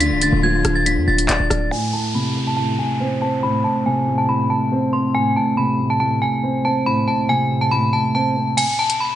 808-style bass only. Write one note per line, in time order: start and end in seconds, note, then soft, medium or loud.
0.00 0.13 D2 loud
0.11 0.32 C1 loud
0.33 0.63 D1 loud
0.65 0.98 D1 loud
0.97 1.07 F2 loud
1.08 1.28 D1 loud
1.29 1.39 D1 loud
1.40 1.50 D1 loud
1.50 1.71 D1 loud